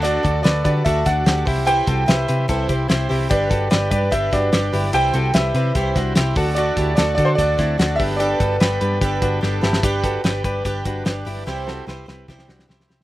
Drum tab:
HH |x-x-x-x-x-x-x-o-|x-x-x-x-x-x-x-o-|x-x-x-x-x-x-x-o-|x-x-x-x-x-x-x-o-|
SD |----o-----o-o---|----o-------o---|----o-----o-o---|----o-----o-o---|
BD |--o---o-o-o---o-|--o-----o-o-----|o-o---o-o-o-----|--------o-o---o-|

HH |x-x-x-x-x-x-x-o-|x-x-x-x-x-x-----|x-x-x-x-x-x-x-o-|----------------|
SD |----o-----o-o---|----o-------o-oo|----o-------o---|o-o-o-o-ooooooo-|
BD |--o---o-o-o---o-|--o-----o-o-----|o-o---o-o-o-----|--------o-------|